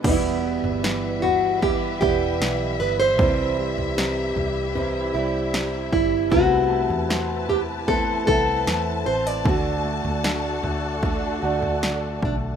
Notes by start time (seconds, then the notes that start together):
0.03 E1 E2 B2 E3 G3 B3 E4 B4 E5, kick, floor tom, crash
0.07 E4
0.43 B3
0.63 G1, floor tom
0.83 E3, snare
1.22 B3 F#4, floor tom
1.62 E3 G3 B3 E4 G4, kick, floor tom
2.01 E1 E3 G3 B3 E4 G4, kick
2.40 B1 E3, snare
2.80 G1 B3 B4
3.00 C5
3.18 C2 C3 E3 G3 C4 G4, kick, floor tom
3.22 E4
3.58 G3
3.77 C2, floor tom
3.97 C3, snare
4.36 C2 G3, floor tom
4.74 C3 E3 G3 C4 E4, floor tom
5.14 C2 G3 C4 E4
5.53 C3, snare
5.92 G1 G3 E4, kick
6.30 C2 C3 E3 A3 B3 F#4 B4 A5, kick, floor tom
6.35 E4
6.70 A3
6.90 E2, floor tom
7.09 C4, snare
7.48 E4 G4, floor tom
7.88 E3 A3 B3 C4 E4 A4, kick, floor tom
8.27 C2 A3 B3 E4 A4, kick
8.67 E2 A3, snare
9.05 A1 C4 C5
9.27 D5
9.44 D2 D3 A3 D4 F#4 A4 D5, kick, floor tom
9.49 F#4
9.84 A3
10.05 D2, floor tom
10.24 D3, snare
10.63 D2 A3, floor tom
11.02 D3 A3 D4 F#4, kick, floor tom
11.42 D2 A3 D4 F#4
11.62 floor tom
11.83 D3, snare
12.23 B1 A3 D4, kick